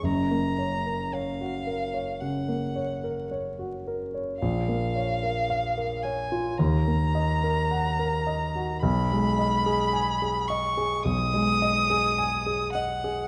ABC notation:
X:1
M:4/4
L:1/16
Q:1/4=54
K:Gb
V:1 name="Violin"
b4 f4 g4 z4 | [K:G#dor] e6 g2 a8 | b6 c'2 d'6 f2 |]
V:2 name="Grand piano"
[G,,,G,,] B, d B d G B d D, B, d B d G B d | [K:G#dor] A,,, A, c A e A c E D,, A, d A f A d F | B,,, G, d G g G d G B,,, G, d G g G d G |]